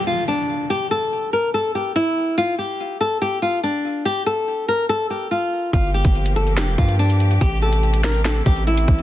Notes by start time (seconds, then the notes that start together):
Already playing: downlifter
0.07 F4
0.28 D4
0.70 G4
0.91 A4
1.33 A#4
1.54 A4
1.75 G4
1.96 E4
2.38 F4
2.59 G4
3.01 A4
3.22 G4
3.42 F4
3.63 D4
4.05 G4
4.26 A4
4.68 A#4
4.89 A4
5.10 G4
5.31 F4
5.73 G1 F3 A#3 F4 G4, kick, closed hi-hat
5.94 G4
6.05 G1, kick, closed hi-hat
6.15 closed hi-hat
6.26 closed hi-hat
6.36 A4, closed hi-hat
6.47 closed hi-hat
6.57 F1 G4, finger snap, snare, closed hi-hat
6.68 closed hi-hat
6.78 G2 F4, kick, closed hi-hat
6.89 closed hi-hat
6.99 D4, closed hi-hat
7.10 closed hi-hat
7.20 closed hi-hat
7.31 closed hi-hat
7.41 A1 C3 A3 G4, kick, closed hi-hat
7.62 A4
7.73 closed hi-hat
7.83 closed hi-hat
7.94 closed hi-hat
8.04 A#4, finger snap, snare, open hi-hat
8.15 closed hi-hat
8.25 A4, finger snap, snare, closed hi-hat
8.36 closed hi-hat
8.46 A1 G4, kick, closed hi-hat
8.56 closed hi-hat
8.67 E4, closed hi-hat
8.77 closed hi-hat
8.88 A1, kick, closed hi-hat
8.99 closed hi-hat